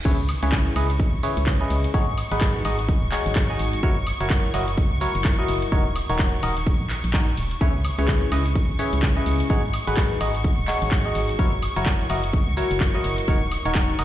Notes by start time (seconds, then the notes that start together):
0.05 C#2 C#3 E4 G#4 B4 C#5 C#6, kick, closed hi-hat, crash, shaker
0.29 open hi-hat, ride, high woodblock, shaker
0.43 C#2 C#3 E4 G#4 B4 C#5, closed hi-hat, shaker
0.52 kick, clap, closed hi-hat, shaker
0.76 C#2 C#3 E4 G#4 B4 D#5, open hi-hat, ride, high woodblock, shaker
0.90 closed hi-hat, shaker
1.00 kick, closed hi-hat, shaker
1.13 G#1
1.23 C#3 E4 G#4 B4 C#5, open hi-hat, ride, shaker
1.37 C#2, closed hi-hat, shaker
1.46 kick, clap, closed hi-hat, shaker
1.61 C#3 E4 G#4 B4 D#5
1.70 C#2, open hi-hat, ride, shaker
1.84 closed hi-hat, shaker
1.94 G#1 G#3 D#4 F#4 G#4 C#5, kick, closed hi-hat, shaker
2.18 open hi-hat, ride, high woodblock, shaker
2.31 G#1 G#3 D#4 F#4 G#4 B4, closed hi-hat, shaker
2.41 kick, clap, closed hi-hat, shaker
2.65 G#1 G#3 D#4 F#4 G#4 D#5, open hi-hat, ride, high woodblock, shaker
2.79 closed hi-hat, shaker
2.89 kick, closed hi-hat, shaker
3.02 D#1
3.12 G#3 D#4 F#4 G#4 C#5, clap, open hi-hat, ride, shaker
3.26 G#1, closed hi-hat, shaker
3.35 kick, clap, closed hi-hat, shaker
3.50 G#3 D#4 F#4 G#4 D#5
3.59 G#1, open hi-hat, ride, shaker
3.73 closed hi-hat, shaker
3.83 F#1 F#3 E4 F#4 A#4 C#5, kick, closed hi-hat, shaker
4.07 open hi-hat, ride, high woodblock, shaker
4.21 F#1 F#3 E4 F#4 A#4 C#5, closed hi-hat, shaker
4.30 kick, clap, closed hi-hat, shaker
4.54 F#1 F#3 E4 F#4 A#4 D#5, open hi-hat, ride, high woodblock, shaker
4.68 closed hi-hat, shaker
4.78 kick, closed hi-hat, shaker
4.91 C#2
5.01 F#3 E4 F#4 A#4 C#5, open hi-hat, ride, shaker
5.15 F#1, closed hi-hat, shaker
5.24 kick, clap, closed hi-hat, shaker
5.39 F#3 E4 F#4 A#4 D#5
5.48 F#1, open hi-hat, ride, shaker
5.62 closed hi-hat, shaker
5.72 D#1 D#3 D#4 F#4 A#4 C#5, kick, closed hi-hat, shaker
5.96 open hi-hat, ride, high woodblock, shaker
6.09 D#1 D#3 D#4 F#4 A#4 C#5, closed hi-hat, shaker
6.19 kick, clap, closed hi-hat, shaker
6.43 D#1 D#3 D#4 F#4 A#4 D#5, open hi-hat, ride, high woodblock, shaker
6.57 closed hi-hat, shaker
6.67 kick, closed hi-hat, shaker
6.80 A#1
6.90 clap, open hi-hat, ride, shaker
7.04 A#1, closed hi-hat, shaker
7.13 D#3 D#4 F#4 A#4 C#5, kick, clap, closed hi-hat, shaker
7.37 D#1, open hi-hat, ride, shaker
7.51 closed hi-hat, shaker
7.61 C#2 C#3 E4 G#4 B4 C#5 C#6, kick, closed hi-hat, shaker
7.85 open hi-hat, ride, high woodblock, shaker
7.98 C#2 C#3 E4 G#4 B4 C#5, closed hi-hat, shaker
8.08 kick, clap, closed hi-hat, shaker
8.32 C#2 C#3 E4 G#4 B4 D#5, open hi-hat, ride, high woodblock, shaker
8.46 closed hi-hat, shaker
8.55 kick, closed hi-hat, shaker
8.69 G#1
8.79 C#3 E4 G#4 B4 C#5, open hi-hat, ride, shaker
8.93 C#2, closed hi-hat, shaker
9.02 kick, clap, closed hi-hat, shaker
9.17 C#3 E4 G#4 B4 D#5
9.26 C#2, open hi-hat, ride, shaker
9.40 closed hi-hat, shaker
9.50 G#1 G#3 D#4 F#4 G#4 C#5, kick, closed hi-hat, shaker
9.74 open hi-hat, ride, high woodblock, shaker
9.87 G#1 G#3 D#4 F#4 G#4 B4, closed hi-hat, shaker
9.97 kick, clap, closed hi-hat, shaker
10.21 G#1 G#3 D#4 F#4 G#4 D#5, open hi-hat, ride, high woodblock, shaker
10.35 closed hi-hat, shaker
10.44 kick, closed hi-hat, shaker
10.58 D#1
10.68 G#3 D#4 F#4 G#4 C#5, clap, open hi-hat, ride, shaker
10.82 G#1, closed hi-hat, shaker
10.91 kick, clap, closed hi-hat, shaker
11.05 G#3 D#4 F#4 G#4 D#5
11.15 G#1, open hi-hat, ride, shaker
11.29 closed hi-hat, shaker
11.39 F#1 F#3 E4 F#4 A#4 C#5, kick, closed hi-hat, shaker
11.63 open hi-hat, ride, high woodblock, shaker
11.76 F#1 F#3 E4 F#4 A#4 C#5, closed hi-hat, shaker
11.86 kick, clap, closed hi-hat, shaker
12.10 F#1 F#3 E4 F#4 A#4 D#5, open hi-hat, ride, high woodblock, shaker
12.24 closed hi-hat, shaker
12.33 kick, closed hi-hat, shaker
12.47 C#2
12.57 F#3 E4 F#4 A#4 C#5, open hi-hat, ride, shaker
12.71 F#1, closed hi-hat, shaker
12.80 kick, clap, closed hi-hat, shaker
12.95 F#3 E4 F#4 A#4 D#5
13.04 F#1, open hi-hat, ride, shaker
13.18 closed hi-hat, shaker
13.28 D#1 D#3 D#4 F#4 A#4 C#5, kick, closed hi-hat, shaker
13.52 open hi-hat, ride, high woodblock, shaker
13.65 D#1 D#3 D#4 F#4 A#4 C#5, closed hi-hat, shaker
13.75 kick, clap, closed hi-hat, shaker
13.99 F#1 D#4 F#4 A#4 D#5, open hi-hat, ride, high woodblock, shaker